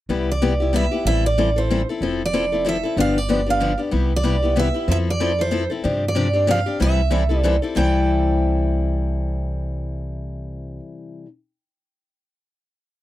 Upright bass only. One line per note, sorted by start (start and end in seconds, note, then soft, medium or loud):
0.09 0.86 C2 medium
1.05 1.82 A1 medium
2.01 2.78 F1 medium
2.96 3.74 G1 medium
3.92 4.70 C2 medium
4.88 5.65 F2 medium
5.85 6.61 G2 medium
6.80 7.57 C2 medium
7.76 10.79 C2 medium